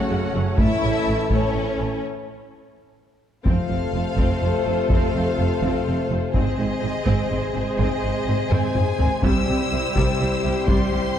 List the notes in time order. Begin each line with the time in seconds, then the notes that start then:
Already playing: C#3 A3 C#4 F#4 C#5 F#5
0.10 F#1 F#2 C#3
0.34 F#1 F#2 F#3
0.57 A1 A2 E3 A3 E4 A4 E5 A5, taiko
0.82 A1 A2 C#3
1.06 A1 A2 E3
1.30 A1 A2 A3 C#4 C#5, taiko
1.54 A1 A2 C#3
1.78 A1 A2 E3
3.45 F1 F2 C3 A3 C4 F4 A4 C5 F5, taiko
3.69 F1 F2 C4
3.93 F1 F2 C4
4.17 F1 F2 C4, taiko
4.41 F1 F2 C4
4.65 F1 F2 C4
4.90 F1 F2 C4 F5, taiko
5.14 F1 F2 C4
5.38 F1 F2 C4
5.62 F1 F2 C4, taiko
5.87 F1 F2 C4
6.10 F1 F2 C4
6.34 G#1 G#2 C3 G#3 C4 G#4 C5 D#5, taiko
6.59 G#1 G#2 C4
6.82 G#1 G#2 C4
7.06 G#1 G#2 C4, taiko
7.31 G#1 G#2 C4
7.55 G#1 G#2 C4
7.79 G#1 G#2 C4 D#5, taiko
8.03 G#1 G#2 C4
8.27 G#1 G#2 C4
8.50 G#1 G#2 C4 G#5, taiko low-mid
8.75 G#1 G#2 C4, taiko low-mid
8.99 G#1 G#2 C4, taiko low
9.23 C2 C3 G3 C4 E4 G4 C5 E6, taiko
9.48 C2 C3 G3
9.72 C2 C3 G3
9.96 C2 C3 G3, taiko
10.20 C2 C3 G3
10.44 C2 C3 G3
10.67 C2 C3 G3 C6, taiko
10.92 C2 C3 G3